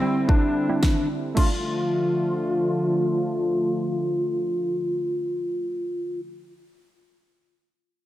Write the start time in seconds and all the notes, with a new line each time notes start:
Already playing: D3 G3 C4 E4
0.02 G3 C4 E4
0.29 D4, kick
0.69 G3 C4 E4
0.83 kick, snare
1.35 D3 F3 A3 D4 F4, kick, crash